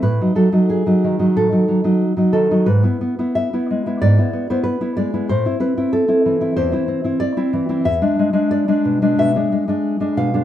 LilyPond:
\new Staff \with { instrumentName = "Nylon-string guitar" } { \time 4/4 \key e \phrygian \tempo 4 = 92 << { b'8 a'8 gis'4 a'4 r8 a'8 | b'4 e''4 d''8. c''16 b'8 d''8 | c''8 b'8 a'4 c''4 d''4 | e''4 d''4 e''4. f''8 | } \\ { a,16 <fis dis'>16 fis16 <fis dis'>8 <fis dis'>16 dis16 <fis dis'>16 a,16 <fis dis'>16 fis16 <fis dis'>8 <fis dis'>16 dis16 <fis dis'>16 | gis,16 <b e'>16 b16 <b e'>8 <b e'>16 gis16 <b e'>16 gis,16 <b e'>16 b16 <b e'>8 <b e'>16 gis16 <b e'>16 | a,16 <c' e'>16 c'16 <c' e'>8 <c' e'>16 e16 <c' e'>16 e,16 <c' e'>16 c'16 <c' e'>8 <c' e'>16 e16 <c' e'>16 | e,16 <gis d'>16 gis16 <gis d'>8 <gis d'>16 b,16 <gis d'>16 b,16 <gis d'>16 gis16 <gis d'>8 <gis d'>16 b,16 <gis d'>16 | } >> }